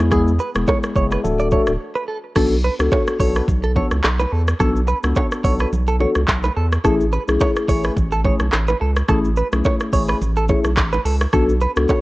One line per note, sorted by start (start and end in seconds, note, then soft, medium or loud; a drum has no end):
0.00 0.39 E2 loud
0.00 cross-stick loud
0.00 high bongo soft
0.00 low bongo medium
0.12 0.31 G#3 medium
0.12 0.31 B3 medium
0.12 0.31 E4 medium
0.12 0.21 G#4 loud
0.12 0.31 G#4 loud
0.12 kick loud
0.12 cross-stick medium
0.12 low conga medium
0.12 shaker medium
0.28 shaker soft
0.39 0.49 B4 medium
0.39 shaker soft
0.55 0.65 E1 medium
0.55 0.93 G#3 medium
0.55 0.93 B3 medium
0.55 0.93 E4 medium
0.55 0.93 G#4 medium
0.55 cross-stick loud
0.55 shaker medium
0.67 0.77 C#5 medium
0.67 kick loud
0.67 high bongo medium
0.67 shaker medium
0.83 cross-stick medium
0.83 shaker medium
0.95 1.17 F#1 medium
0.95 1.22 G#3 medium
0.95 1.22 B3 medium
0.95 1.22 E4 medium
0.95 1.22 G#4 medium
0.95 1.05 C#5 medium
0.95 kick loud
0.95 shaker medium
1.11 1.19 B4 medium
1.11 cross-stick medium
1.11 shaker medium
1.23 1.58 D1 loud
1.23 1.50 A3 medium
1.23 1.50 D4 medium
1.23 1.50 F#4 medium
1.23 1.50 A4 loud
1.23 low conga medium
1.23 shaker medium
1.39 1.47 D5 medium
1.39 shaker soft
1.51 1.71 A3 medium
1.51 1.71 D4 medium
1.51 1.71 F#4 medium
1.51 1.71 A4 medium
1.51 1.61 C#5 medium
1.51 kick medium
1.51 low bongo medium
1.51 low conga medium
1.51 shaker medium
1.67 1.77 D1 medium
1.67 cross-stick medium
1.67 shaker medium
1.96 2.03 B4 medium
2.08 2.17 A4 medium
2.35 2.70 B1 loud
2.35 2.55 B3 medium
2.35 2.55 D4 medium
2.35 2.55 F#4 medium
2.35 2.55 A4 loud
2.35 2.45 A4 loud
2.35 kick loud
2.35 cross-stick medium
2.35 crash loud
2.35 low conga medium
2.35 shaker medium
2.52 shaker soft
2.64 2.73 B4 medium
2.64 shaker soft
2.79 2.89 C#2 medium
2.79 3.17 B3 medium
2.79 3.17 D4 medium
2.79 3.17 F#4 medium
2.79 3.17 A4 medium
2.79 cross-stick loud
2.79 shaker medium
2.92 3.01 C#5 medium
2.92 kick loud
2.92 high bongo medium
2.92 shaker medium
3.07 cross-stick medium
3.07 shaker medium
3.20 3.42 B1 medium
3.20 3.46 B3 medium
3.20 3.46 D4 medium
3.20 3.46 F#4 medium
3.20 3.46 A4 medium
3.20 3.36 C#5 medium
3.20 kick medium
3.20 open hi-hat medium
3.20 shaker medium
3.35 3.43 B4 medium
3.35 cross-stick medium
3.35 shaker medium
3.48 3.82 B1 loud
3.48 kick loud
3.48 low conga medium
3.48 shaker medium
3.63 3.71 A4 medium
3.63 shaker soft
3.76 3.95 B3 medium
3.76 3.95 D4 medium
3.76 3.95 F#4 medium
3.76 3.95 A4 medium
3.76 3.86 C#5 medium
3.76 kick medium
3.76 low bongo medium
3.76 low conga medium
3.91 4.01 C#2 medium
3.91 cross-stick medium
3.91 shaker medium
4.04 4.26 B1 medium
4.04 clap medium
4.04 high bongo medium
4.04 shaker medium
4.19 4.32 B4 medium
4.19 low bongo medium
4.19 shaker medium
4.32 4.54 E2 loud
4.32 4.41 A4 medium
4.48 cross-stick loud
4.48 shaker medium
4.60 4.94 B1 loud
4.60 4.79 B3 medium
4.60 4.79 D4 medium
4.60 4.79 F#4 medium
4.60 4.70 A4 loud
4.60 4.80 A4 loud
4.60 kick loud
4.60 cross-stick medium
4.60 low conga medium
4.60 shaker medium
4.76 shaker soft
4.88 4.98 B4 medium
4.88 shaker medium
5.03 5.13 C#2 medium
5.03 5.41 B3 medium
5.03 5.41 D4 medium
5.03 5.42 F#4 medium
5.03 5.42 A4 medium
5.03 cross-stick loud
5.03 shaker medium
5.16 5.26 C#5 medium
5.16 kick loud
5.16 high bongo medium
5.16 shaker medium
5.31 cross-stick medium
5.31 shaker medium
5.44 5.66 B1 medium
5.44 5.70 B3 medium
5.44 5.71 D4 medium
5.44 5.71 F#4 medium
5.44 5.71 A4 medium
5.44 5.54 C#5 medium
5.44 kick loud
5.44 open hi-hat medium
5.44 shaker medium
5.59 5.68 B4 medium
5.59 cross-stick medium
5.59 shaker medium
5.72 6.06 B1 loud
5.72 low conga medium
5.72 shaker medium
5.88 5.96 A4 medium
5.88 shaker soft
6.00 6.19 B3 medium
6.00 6.20 D4 medium
6.00 6.20 F#4 medium
6.00 6.20 A4 medium
6.00 6.10 C#5 medium
6.00 low bongo medium
6.00 low conga medium
6.15 6.26 C#2 medium
6.15 cross-stick medium
6.15 shaker medium
6.28 6.50 B1 loud
6.28 kick medium
6.28 clap medium
6.28 high bongo medium
6.28 shaker medium
6.44 6.52 B4 medium
6.44 low bongo medium
6.44 shaker medium
6.57 6.78 E2 medium
6.57 6.66 A4 medium
6.72 cross-stick loud
6.72 shaker medium
6.84 7.18 A1 loud
6.84 7.03 A3 loud
6.84 7.04 C#4 medium
6.84 7.04 E4 medium
6.84 7.04 G#4 loud
6.84 6.94 A4 loud
6.84 kick loud
6.84 cross-stick medium
6.84 low conga medium
6.84 shaker medium
7.01 shaker soft
7.12 7.22 B4 medium
7.12 shaker medium
7.28 7.38 B1 medium
7.28 7.66 A3 medium
7.28 7.66 C#4 medium
7.28 7.66 E4 medium
7.28 7.66 G#4 medium
7.28 cross-stick loud
7.28 shaker medium
7.40 7.50 C#5 medium
7.40 kick loud
7.40 high bongo medium
7.40 shaker medium
7.56 cross-stick medium
7.56 shaker medium
7.68 7.90 A1 medium
7.68 7.95 A3 medium
7.68 7.95 C#4 medium
7.68 7.95 E4 medium
7.68 7.95 G#4 medium
7.68 7.84 C#5 medium
7.68 kick loud
7.68 open hi-hat medium
7.68 shaker medium
7.84 7.92 B4 medium
7.84 cross-stick medium
7.84 shaker medium
7.97 8.30 A1 loud
7.97 kick loud
7.97 low conga medium
7.97 shaker medium
8.12 8.20 A4 medium
8.12 shaker soft
8.25 8.44 A3 medium
8.25 8.44 C#4 medium
8.25 8.44 E4 medium
8.25 8.44 G#4 medium
8.25 8.34 C#5 medium
8.25 kick loud
8.25 low bongo medium
8.25 low conga medium
8.40 8.50 B1 loud
8.40 cross-stick medium
8.40 shaker medium
8.52 8.75 A1 medium
8.52 clap medium
8.52 high bongo medium
8.52 shaker medium
8.68 8.76 B4 medium
8.68 low bongo medium
8.68 shaker medium
8.81 9.03 C#2 loud
8.81 8.90 A4 medium
8.96 cross-stick loud
8.96 shaker medium
9.09 9.42 A1 loud
9.09 9.28 A3 medium
9.09 9.28 C#4 medium
9.09 9.28 E4 medium
9.09 9.28 G#4 loud
9.09 9.18 A4 loud
9.09 kick loud
9.09 cross-stick loud
9.09 low conga medium
9.09 shaker medium
9.25 shaker soft
9.36 9.46 B4 medium
9.36 shaker medium
9.52 9.62 B1 medium
9.52 9.90 A3 medium
9.52 9.90 C#4 medium
9.52 9.90 E4 medium
9.52 9.90 G#4 medium
9.52 cross-stick loud
9.52 shaker medium
9.64 9.74 C#5 medium
9.64 kick loud
9.64 high bongo medium
9.64 shaker medium
9.80 cross-stick medium
9.80 shaker medium
9.93 10.15 A1 loud
9.93 10.19 A3 medium
9.93 10.19 C#4 medium
9.93 10.19 E4 medium
9.93 10.19 G#4 medium
9.93 10.02 C#5 medium
9.93 kick loud
9.93 open hi-hat medium
9.93 shaker medium
10.08 10.16 B4 medium
10.08 cross-stick medium
10.08 shaker medium
10.21 10.55 A1 loud
10.21 low conga medium
10.21 shaker medium
10.36 10.44 A4 medium
10.36 shaker soft
10.48 10.68 A3 medium
10.48 10.68 C#4 medium
10.48 10.68 E4 medium
10.48 10.68 G#4 medium
10.48 10.59 C#5 medium
10.48 kick medium
10.48 low bongo medium
10.48 low conga medium
10.48 shaker medium
10.64 10.79 B1 loud
10.64 cross-stick medium
10.64 shaker medium
10.77 10.99 A1 loud
10.77 kick medium
10.77 clap medium
10.77 high bongo medium
10.77 shaker medium
10.92 11.00 B4 medium
10.92 low bongo medium
10.92 shaker medium
11.05 11.27 C#2 medium
11.05 11.14 A4 medium
11.05 open hi-hat medium
11.21 cross-stick loud
11.21 high bongo soft
11.21 shaker medium
11.33 11.67 B1 loud
11.33 11.52 B3 medium
11.33 11.52 D4 medium
11.33 11.52 F#4 medium
11.33 11.43 A4 loud
11.33 11.53 A4 loud
11.33 kick loud
11.33 cross-stick medium
11.33 low conga medium
11.33 shaker medium
11.49 shaker soft
11.61 11.71 B4 medium
11.61 shaker medium
11.76 11.86 C#2 medium
11.76 12.01 B3 medium
11.76 12.01 D4 medium
11.76 12.01 F#4 medium
11.76 12.01 A4 medium
11.76 cross-stick loud
11.76 shaker medium
11.89 11.99 C#5 medium
11.89 kick loud
11.89 high bongo medium
11.89 shaker medium